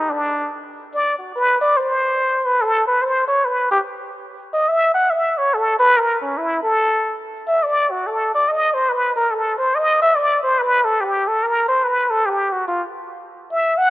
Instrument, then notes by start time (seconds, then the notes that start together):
muted trumpet
Already playing: D#4
0.10 D4
0.94 D5
1.19 F#4
1.36 B4
1.61 D5
1.77 C5
2.46 B4
2.61 A4
2.87 B4
3.02 C5
3.28 C#5
3.45 B4
3.71 G4
4.54 D#5
4.68 E5
4.94 F#5
5.10 E5
5.38 C#5
5.54 A4
5.79 B4
5.97 A#4
6.21 C#4
6.38 E4
6.63 A4
7.48 E5
7.63 D5
7.91 F#4
8.07 A4
8.35 D5
8.48 D#5
8.74 C5
8.89 B4
9.16 A#4
9.31 A4
9.58 C5
9.75 D#5
10.02 E5
10.15 D5
10.43 C5
10.59 B4
10.84 A4
11.01 G4
11.28 A4
11.43 A#4
11.68 C5
11.84 B4
12.11 A4
12.26 G4
12.52 F#4
12.68 F4
13.52 E5
13.78 F#5